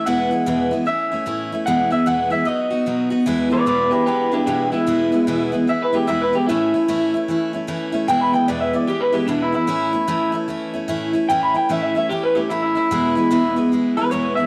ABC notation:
X:1
M:4/4
L:1/8
Q:"Swing" 1/4=149
K:E
V:1 name="Clean electric guitar"
f4 e4 | f e f e d3 z | z [B=d] [Bd] [=GB] [GB] [=DG] [DG] E- | E3 z (3e B =G (3e B G |
E6 z2 | (3=g b g (3=d e d (3=G B G (3=D E E- | E3 z4 z | (3=g b g (3e e e (3=G B G (3E E E- |
E3 z2 B c e |]
V:2 name="Steel-string acoustic guitar"
[E,,B,,E,G,B,E] [E,G,B,E] [E,,B,,E,G,B,E] [E,G,B,E] [E,A,CE] [A,CE] [A,,E,A,CE] [A,CE] | [E,,B,,E,G,B,E] [E,G,B,E] [E,,B,,E,G,B,E] [E,G,B,E] [F,B,DF] [B,DF] [B,,F,B,DF] [B,DF] | [E,,B,,E,G,B,E] [E,G,B,E] [E,,B,,E,G,B,E] [E,G,B,E] [E,G,B,E] [E,G,B,E] [E,,B,,E,G,B,E] [E,G,B,E] | [E,,B,,E,G,B,E] [E,G,B,E] [E,,B,,E,G,B,E] [E,G,B,E] [E,G,B,E] [E,G,B,E] [E,,B,,E,G,B,E] [E,G,B,E] |
[A,,E,A,CE] [A,CE] [A,,E,A,CE] [A,CE] [E,A,CE] [A,CE] [A,,E,A,CE] [A,CE] | [E,,B,,E,G,B,E] [E,G,B,E] [E,,B,,E,G,B,E] [E,G,B,E] [E,G,B,E] [E,G,B,E] [E,,B,,E,G,B,E] [E,G,B,E] | [A,,E,A,CE] [A,CE] [A,,E,A,CE] [A,CE] [E,A,CE] [A,CE] [A,,E,A,CE] [A,CE] | [A,,E,A,CE] [A,CE] [A,,E,A,CE] [A,CE] [E,A,CE] [A,CE] [A,,E,A,CE] [A,CE] |
[E,,B,,E,G,B,E] [E,G,B,E] [E,,B,,E,G,B,E] [E,G,B,E] [E,G,B,E] [E,G,B,E] [E,,B,,E,G,B,E] [E,G,B,E] |]